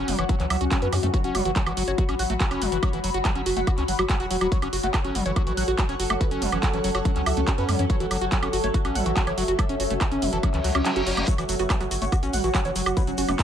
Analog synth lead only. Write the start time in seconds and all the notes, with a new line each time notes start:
0.08 C#4
0.19 C#5
0.29 C#4
0.40 C#4
0.50 E5
0.61 C#4
0.71 C#4
0.82 B4
0.93 C#4
1.03 C#4
1.14 C#5
1.24 F#4
1.35 F#4
1.45 F#4
1.67 F#4
1.77 F#4
1.88 C#5
1.98 F#4
2.09 F#4
2.19 F#5
2.30 F#4
2.40 F#4
2.51 C#5
2.62 F#4
2.72 F#4
2.83 C#5
2.93 F#4
3.04 F#4
3.14 F#4
3.36 F#4
3.46 F#4
3.57 F#5
3.67 F#4
3.78 F#4
3.88 F#5
3.99 F#4
4.10 F#4
4.20 F#5
4.31 F#4
4.41 F#4
4.52 C#5
4.62 F#4
4.73 F#4
4.83 F#4
5.05 F#4
5.15 F#4
5.26 C#5
5.36 F#4
5.47 F#4
5.57 F#5
5.68 F#4
5.79 F#4
5.89 C#5
6.00 F#4
6.10 F#4
6.21 B4
6.31 C#4
6.42 C#4
6.52 C#4
6.74 C#4
6.84 C#4
6.95 C#5
7.05 C#4
7.16 C#4
7.26 E5
7.37 C#4
7.48 C#4
7.58 B4
7.69 C#4
7.79 C#4
7.90 C#5
8.00 F#4
8.11 F#4
8.21 F#4
8.43 F#4
8.53 F#4
8.64 C#5
8.74 F#4
8.85 F#4
8.95 F#5
9.06 F#4
9.16 F#4
9.27 C#5
9.38 F#4
9.48 F#4
9.59 A4
9.69 C#4
9.80 C#4
9.90 C#4
10.12 C#4
10.22 C#4
10.33 A4
10.43 C#4
10.54 C#4
10.64 F#4
10.75 C#4
10.86 C#4
10.96 F#4
11.07 C#4
11.17 C#4
11.28 C#5
11.38 F#4
11.49 F#4
11.60 F#4
11.81 F#4
11.91 F#4
12.02 C#5
12.12 F#4
12.23 F#4
12.33 F#5
12.44 F#4
12.55 F#4
12.65 C#5
12.76 F#4
12.86 F#4
12.97 B4
13.07 C#4
13.18 C#4
13.29 C#4